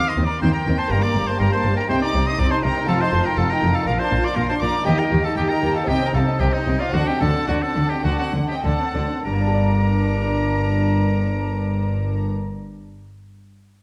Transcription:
Already playing: lute D#3 C4 G4, oboe F5
0.08 oboe D#5, violin section C6 D#6
0.17 double bass section D#2, cello section D#3, lute D#3, viola section C4
0.25 oboe D5, violin section A#5 D6
0.40 double bass section D#2, lute D#3, cello section D#3, viola section C4, oboe C5, violin section G5 C6
0.52 oboe A#4, violin section G5 A#5
0.66 double bass section D#2, lute D#3, cello section D#3, viola section C4
0.78 oboe C5, violin section A5 C6
0.88 double bass section G1, cello section G2, lute G2 A#3 G4, viola section G3, oboe A#4, violin section G5 A#5
1.03 viola section A#3, oboe D5, violin section A#5 D6
1.15 double bass section G1, lute G2, cello section G2, viola section G3
1.27 viola section A#3, oboe C5, violin section A5 C6
1.39 double bass section G1, lute G2, cello section G2, viola section G3, oboe A#4, violin section G5 A#5
1.52 viola section A#3, oboe C5, violin section A5 C6
1.64 double bass section G1, lute G2, cello section G2, viola section G3
1.76 viola section A#3, oboe A#4, violin section G5 A#5
1.87 double bass section C2, cello section C3, lute C3 D#4 G4, viola section C4, oboe C5, violin section G5 C6
2.01 viola section D#4, oboe D5, violin section A#5 D6
2.14 double bass section C2, cello section C3, lute C3, viola section C4
2.26 viola section D#4, oboe D#5, violin section C6 D#6
2.38 double bass section C2, lute C3, cello section C3, viola section C4, oboe D5, violin section A#5 D6
2.50 viola section D#4, oboe C5, violin section A5 C6
2.62 double bass section C2, cello section C3, lute C3, viola section C4, oboe A#4, violin section G5 A#5
2.76 viola section D#4
2.84 cello section F2, lute A3 F4, viola section F4, violin section F5
2.88 double bass section F1, lute F2, oboe A4, violin section A5
2.99 viola section D#4, oboe C5, violin section A5 C6
3.13 double bass section F1, cello section F2, lute F2, viola section F4
3.25 viola section D#4, oboe A#4, violin section G5 A#5
3.37 double bass section F1, lute F2, cello section F2, viola section F4, oboe A4, violin section F5 A5
3.49 viola section D#4, oboe A#4, violin section G5 A#5
3.62 double bass section F1, cello section F2, lute F2, viola section F4
3.73 viola section D#4, oboe A4, violin section F5 A5
3.82 lute A#3 D4 F4, violin section F5
3.86 double bass section A#1, lute A#2, cello section A#2, viola section F4, oboe A#4, violin section A#5
3.98 viola section D4, oboe C5, violin section A5 C6
4.11 double bass section A#1, cello section A#2, lute A#2, viola section F4
4.23 viola section D4, oboe D5, violin section A#5 D6
4.36 double bass section A#1, lute A#2, cello section A#2, viola section F4, oboe A#4, violin section F5 A#5
4.49 viola section D4, oboe C5, violin section A5 C6
4.61 double bass section A#1, cello section A#2, lute A#2, viola section F4, oboe D5, violin section A#5 D6
4.74 viola section D4
4.82 lute A#3 D#4 G4
4.86 double bass section D#2, cello section D#3, lute D#3, oboe G4, viola section G4, violin section D#5 G5
4.98 viola section D#4, oboe A#4, violin section G5 A#5
5.11 double bass section D#2, cello section D#3, lute D#3, viola section G4
5.23 viola section D#4, oboe A4, violin section F5 A5
5.36 double bass section D#2, cello section D#3, lute D#3, oboe G4, viola section G4, violin section D#5 G5
5.48 viola section D#4, oboe A#4, violin section G5 A#5
5.62 double bass section D#2, cello section D#3, lute D#3, viola section G4
5.74 viola section D#4, oboe A4, violin section F5 A5
5.84 double bass section C2, cello section C3, lute C4 D#4 G4, violin section D#5 G5
5.88 lute C3, viola section C4, oboe G4
6.02 viola section D#4, oboe A#4, violin section G5 A#5
6.13 double bass section C2, cello section C3, lute C3, viola section C4, oboe A4, violin section F5 A5
6.28 viola section D#4
6.39 double bass section C2, cello section C3, lute C3, viola section C4, oboe G4, violin section D#5 G5
6.52 oboe D#4, viola section D#4, violin section C5 D#5
6.66 double bass section C2, cello section C3, lute C3, viola section C4
6.79 viola section D#4, oboe F4, violin section D5 F5
6.89 lute C4 F#4, violin section D5 F#5
6.93 double bass section D2, cello section D3, lute D3, viola section D4, oboe F#4
7.07 viola section C4, oboe G4, violin section D#5 G5
7.20 double bass section D2, cello section D3, lute D3, viola section D4, oboe A4, violin section F#5 A5
7.35 viola section C4
7.47 double bass section D2, cello section D3, lute D3, viola section D4, oboe F#4, violin section D5 F#5
7.60 viola section C4, oboe A4, violin section F#5 A5
7.76 double bass section D2, cello section D3, lute D3, viola section D4
7.89 viola section C4, oboe G4, violin section D#5 G5
8.03 double bass section D2, cello section D3, lute D3, viola section D4, oboe F#4, violin section D5 F#5
8.18 viola section C4, oboe F#4, violin section D5 F#5
8.34 double bass section D2, cello section D3, lute D3, viola section D4
8.48 viola section C4, oboe G4, violin section D#5 G5
8.63 double bass section D2, cello section D3, lute D3, viola section D4, oboe A4, violin section F#5 A5
8.79 viola section C4
8.94 double bass section D2, cello section D3, lute D3, viola section D4
9.10 viola section C4
9.24 double bass section G1, cello section G2, lute G3, viola section D4, violin section A#4 A#5, oboe A#4
9.33 lute A#3
9.41 lute D4
9.47 lute G4
9.54 lute D5

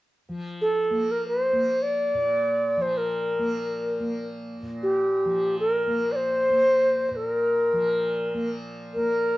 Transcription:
0.29 tanpura F3
0.61 bansuri A4
0.90 tanpura A#3
1.11 bansuri A#4
1.28 bansuri C5
1.53 tanpura A#3
1.82 bansuri D5
2.14 tanpura A#2
2.77 tanpura F3
2.82 bansuri C5
2.97 bansuri A#4
3.39 tanpura A#3
4.00 tanpura A#3
4.62 tanpura A#2
4.83 bansuri G4
5.25 tanpura F3
5.60 bansuri A#4
5.87 tanpura A#3
6.12 bansuri C5 D5
6.50 tanpura A#3
7.09 tanpura A#2, bansuri C5
7.16 bansuri A4
7.27 bansuri A#4
7.73 tanpura F3
8.34 tanpura A#3
8.94 tanpura A#3, bansuri A#4

